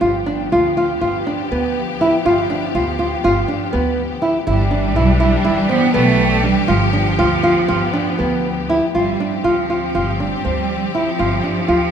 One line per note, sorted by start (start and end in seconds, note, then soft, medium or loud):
0.01 0.54 G1 medium
0.01 4.43 F3 medium
0.01 4.43 B3 medium
0.01 0.16 F4 medium
0.01 4.43 G4 medium
0.26 0.41 D4 medium
0.52 0.91 D2 medium
0.52 0.67 F4 medium
0.77 0.91 F4 medium
1.01 1.21 G1 medium
1.01 1.16 F4 medium
1.27 1.41 D4 medium
1.51 2.09 D2 medium
1.51 1.80 B3 medium
2.01 2.15 E4 medium
2.25 2.76 G1 medium
2.25 2.40 F4 medium
2.50 2.64 D4 medium
2.75 3.13 D2 medium
2.75 2.89 F4 medium
2.99 3.13 F4 medium
3.24 3.44 G1 medium
3.24 3.38 F4 medium
3.48 3.63 D4 medium
3.73 4.32 D2 medium
3.73 4.01 B3 medium
4.22 4.36 E4 medium
4.47 4.96 G1 medium
4.47 6.67 E3 medium
4.47 5.72 G3 loud
4.47 6.67 D4 medium
4.47 4.61 E4 medium
4.47 8.91 G4 medium
4.71 4.85 D4 medium
4.96 5.35 B1 medium
4.96 5.10 E4 medium
5.20 5.34 E4 medium
5.45 5.65 G1 medium
5.45 5.59 E4 medium
5.69 5.94 B3 loud
5.69 5.84 C4 medium
5.94 6.53 B1 medium
5.94 6.46 A3 loud
5.94 6.23 B3 medium
6.43 6.71 G3 medium
6.43 6.58 D4 medium
6.68 7.21 G1 loud
6.68 8.93 F3 medium
6.68 8.70 F3 medium
6.68 8.93 B3 medium
6.68 6.83 F4 medium
6.93 7.08 D4 medium
7.19 7.58 D2 medium
7.19 7.33 F4 medium
7.43 7.58 F4 medium
7.68 7.89 G1 medium
7.68 7.83 F4 medium
7.93 8.08 D4 medium
8.19 8.79 D2 medium
8.19 8.48 B3 medium
8.70 8.84 E4 medium
8.94 9.15 G1 medium
8.94 11.91 F3 medium
8.94 9.41 G3 medium
8.94 11.91 C4 medium
8.94 9.09 F4 medium
8.94 11.91 G4 medium
9.20 9.35 D4 medium
9.44 9.97 D2 medium
9.44 10.22 F3 medium
9.44 9.59 F4 medium
9.70 9.84 F4 medium
9.95 10.34 G1 medium
9.95 10.09 F4 medium
10.20 10.95 G3 medium
10.20 10.34 D4 medium
10.45 11.03 D2 medium
10.45 10.73 C4 medium
10.94 11.91 F3 medium
10.94 11.09 E4 medium
11.19 11.39 G1 medium
11.19 11.33 F4 medium
11.44 11.58 D4 medium
11.68 11.91 D2 medium
11.68 11.83 F4 medium